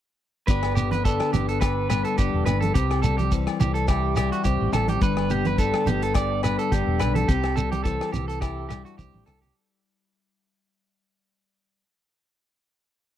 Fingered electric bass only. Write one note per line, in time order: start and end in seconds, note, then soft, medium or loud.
0.48 1.18 G1 medium
1.33 2.03 G1 medium
2.19 2.31 G1 medium
2.34 2.44 E1 medium
2.47 2.70 G1 medium
2.75 3.45 C2 loud
3.60 4.30 C2 medium
4.45 4.57 C2 loud
4.61 4.71 A1 medium
4.72 4.96 A1 medium
5.02 5.71 G1 loud
5.86 6.56 G1 medium
6.72 6.84 G1 loud
6.87 6.97 E1 medium
7.00 7.23 B1 medium
7.29 7.99 C2 loud
8.14 8.83 C2 medium
8.99 9.11 C2 medium
9.14 9.25 A1 medium
9.28 9.51 C2 medium